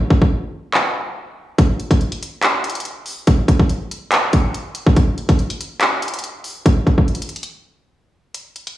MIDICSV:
0, 0, Header, 1, 2, 480
1, 0, Start_track
1, 0, Tempo, 422535
1, 1801, Time_signature, 4, 2, 24, 8
1, 9972, End_track
2, 0, Start_track
2, 0, Title_t, "Drums"
2, 120, Note_on_c, 9, 36, 94
2, 234, Note_off_c, 9, 36, 0
2, 248, Note_on_c, 9, 36, 91
2, 361, Note_off_c, 9, 36, 0
2, 841, Note_on_c, 9, 39, 114
2, 955, Note_off_c, 9, 39, 0
2, 1801, Note_on_c, 9, 36, 117
2, 1801, Note_on_c, 9, 42, 77
2, 1915, Note_off_c, 9, 36, 0
2, 1915, Note_off_c, 9, 42, 0
2, 2042, Note_on_c, 9, 42, 41
2, 2155, Note_off_c, 9, 42, 0
2, 2167, Note_on_c, 9, 36, 92
2, 2169, Note_on_c, 9, 42, 66
2, 2281, Note_off_c, 9, 36, 0
2, 2282, Note_off_c, 9, 42, 0
2, 2283, Note_on_c, 9, 42, 45
2, 2396, Note_off_c, 9, 42, 0
2, 2409, Note_on_c, 9, 42, 74
2, 2523, Note_off_c, 9, 42, 0
2, 2530, Note_on_c, 9, 42, 82
2, 2644, Note_off_c, 9, 42, 0
2, 2755, Note_on_c, 9, 42, 80
2, 2761, Note_on_c, 9, 39, 114
2, 2869, Note_off_c, 9, 42, 0
2, 2875, Note_off_c, 9, 39, 0
2, 3002, Note_on_c, 9, 42, 71
2, 3064, Note_off_c, 9, 42, 0
2, 3064, Note_on_c, 9, 42, 73
2, 3128, Note_off_c, 9, 42, 0
2, 3128, Note_on_c, 9, 42, 71
2, 3184, Note_off_c, 9, 42, 0
2, 3184, Note_on_c, 9, 42, 75
2, 3241, Note_off_c, 9, 42, 0
2, 3241, Note_on_c, 9, 42, 66
2, 3354, Note_off_c, 9, 42, 0
2, 3474, Note_on_c, 9, 46, 57
2, 3588, Note_off_c, 9, 46, 0
2, 3718, Note_on_c, 9, 42, 77
2, 3720, Note_on_c, 9, 36, 112
2, 3832, Note_off_c, 9, 42, 0
2, 3833, Note_off_c, 9, 36, 0
2, 3959, Note_on_c, 9, 36, 93
2, 3961, Note_on_c, 9, 42, 72
2, 4072, Note_off_c, 9, 36, 0
2, 4075, Note_off_c, 9, 42, 0
2, 4086, Note_on_c, 9, 36, 91
2, 4199, Note_on_c, 9, 42, 69
2, 4200, Note_off_c, 9, 36, 0
2, 4313, Note_off_c, 9, 42, 0
2, 4446, Note_on_c, 9, 42, 74
2, 4559, Note_off_c, 9, 42, 0
2, 4674, Note_on_c, 9, 42, 78
2, 4680, Note_on_c, 9, 39, 112
2, 4787, Note_off_c, 9, 42, 0
2, 4794, Note_off_c, 9, 39, 0
2, 4918, Note_on_c, 9, 42, 93
2, 4920, Note_on_c, 9, 36, 87
2, 5031, Note_off_c, 9, 42, 0
2, 5033, Note_off_c, 9, 36, 0
2, 5161, Note_on_c, 9, 42, 66
2, 5275, Note_off_c, 9, 42, 0
2, 5394, Note_on_c, 9, 42, 76
2, 5508, Note_off_c, 9, 42, 0
2, 5527, Note_on_c, 9, 36, 108
2, 5640, Note_on_c, 9, 42, 80
2, 5641, Note_off_c, 9, 36, 0
2, 5641, Note_on_c, 9, 36, 118
2, 5754, Note_off_c, 9, 42, 0
2, 5755, Note_off_c, 9, 36, 0
2, 5882, Note_on_c, 9, 42, 40
2, 5995, Note_off_c, 9, 42, 0
2, 6008, Note_on_c, 9, 36, 92
2, 6008, Note_on_c, 9, 42, 68
2, 6121, Note_off_c, 9, 36, 0
2, 6121, Note_off_c, 9, 42, 0
2, 6121, Note_on_c, 9, 42, 43
2, 6235, Note_off_c, 9, 42, 0
2, 6249, Note_on_c, 9, 42, 74
2, 6362, Note_off_c, 9, 42, 0
2, 6368, Note_on_c, 9, 42, 79
2, 6482, Note_off_c, 9, 42, 0
2, 6594, Note_on_c, 9, 42, 79
2, 6601, Note_on_c, 9, 39, 108
2, 6708, Note_off_c, 9, 42, 0
2, 6714, Note_off_c, 9, 39, 0
2, 6841, Note_on_c, 9, 42, 74
2, 6906, Note_off_c, 9, 42, 0
2, 6906, Note_on_c, 9, 42, 73
2, 6969, Note_off_c, 9, 42, 0
2, 6969, Note_on_c, 9, 42, 73
2, 7027, Note_off_c, 9, 42, 0
2, 7027, Note_on_c, 9, 42, 70
2, 7084, Note_off_c, 9, 42, 0
2, 7084, Note_on_c, 9, 42, 67
2, 7198, Note_off_c, 9, 42, 0
2, 7316, Note_on_c, 9, 46, 57
2, 7430, Note_off_c, 9, 46, 0
2, 7561, Note_on_c, 9, 36, 112
2, 7562, Note_on_c, 9, 42, 78
2, 7675, Note_off_c, 9, 36, 0
2, 7676, Note_off_c, 9, 42, 0
2, 7800, Note_on_c, 9, 36, 91
2, 7805, Note_on_c, 9, 42, 71
2, 7914, Note_off_c, 9, 36, 0
2, 7918, Note_off_c, 9, 42, 0
2, 7928, Note_on_c, 9, 36, 90
2, 8041, Note_off_c, 9, 36, 0
2, 8043, Note_on_c, 9, 42, 43
2, 8122, Note_off_c, 9, 42, 0
2, 8122, Note_on_c, 9, 42, 57
2, 8202, Note_off_c, 9, 42, 0
2, 8202, Note_on_c, 9, 42, 78
2, 8282, Note_off_c, 9, 42, 0
2, 8282, Note_on_c, 9, 42, 45
2, 8362, Note_off_c, 9, 42, 0
2, 8362, Note_on_c, 9, 42, 64
2, 8442, Note_off_c, 9, 42, 0
2, 8442, Note_on_c, 9, 42, 79
2, 8555, Note_off_c, 9, 42, 0
2, 9480, Note_on_c, 9, 42, 79
2, 9594, Note_off_c, 9, 42, 0
2, 9722, Note_on_c, 9, 42, 40
2, 9836, Note_off_c, 9, 42, 0
2, 9849, Note_on_c, 9, 42, 66
2, 9963, Note_off_c, 9, 42, 0
2, 9972, End_track
0, 0, End_of_file